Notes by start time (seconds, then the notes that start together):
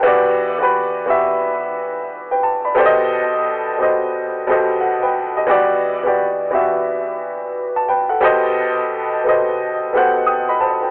Already playing: B4 G5
0.03 E3 B3 F#4 G4
0.07 D5
0.59 E3 B3 F#4 G4
0.63 B4
1.06 E3 B3 F#4 G4
1.10 E5
2.31 B4 G5
2.43 A5
2.65 D5 B5
2.75 B2 B3 G4 A4 C5
2.79 D5
2.86 D#5
3.78 B2 B3 G4 A4 C5
3.82 D#5
4.47 B2 B3 G4 A4 C5
4.51 D#5
4.80 A4 F#5
5.03 B4 G5
5.37 G4 D#5
5.47 E3 B3 F#4 G4
5.51 D5
6.03 E3 B3 F#4 G4
6.07 D5
6.51 E3 B3 F#4 G4
6.55 E5
7.76 A5
7.88 B4 G5
8.09 A4 F#5
8.21 B2 B3 G4 A4 C5
8.25 D#5
9.24 B2 B3 G4 A4 C5
9.29 D#5
9.93 B2 B3 G4 A4 C5
9.97 F#5
10.26 G5 D#6
10.49 D#5 B5
10.60 C5 A5
10.82 B4 G5